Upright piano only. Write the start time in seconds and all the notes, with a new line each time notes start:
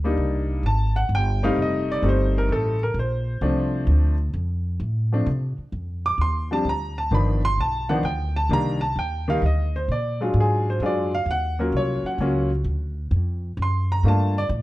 0.04 G3 A#3 D4 D#4
0.66 A5
0.96 F#5
1.15 G5
1.43 G3 A3 C4 D#4 F5
1.62 D#5
1.92 D5
2.03 G3 A3 C4 D#4
2.09 C5
2.38 A#4
2.52 A4
2.83 A#4
2.99 C5
3.42 F3 A3 C4 D4
5.13 F3 A3 C4 D4
6.06 D6
6.21 C6
6.51 F3 G3 C4 D4 A5
6.69 A#5
6.98 A5
7.11 D#3 F3 B3 D4 B5
7.45 C6
7.61 A5
7.89 D#3 F3 B3 D4 F#5
8.05 G5
8.36 A5
8.50 D#3 G3 A#3 D4 A#5
8.81 A5
8.99 G5
9.28 D#3 G3 A#3 D#4 F5
9.46 D#5
9.76 C5
9.92 D5
10.21 F#3 G#3 D4 F4
10.40 G#4
10.70 C5
10.82 F#3 G#3 D4 F4
10.86 D5
11.15 F5
11.31 F#5
11.59 F#3 A#3 C#4 F4 A#4
11.77 C#5
12.06 F#5
12.20 F#3 A#3 C#4 F4
13.62 C6
13.92 A#5
14.05 A3 A#3 D4 F4 A5
14.38 D5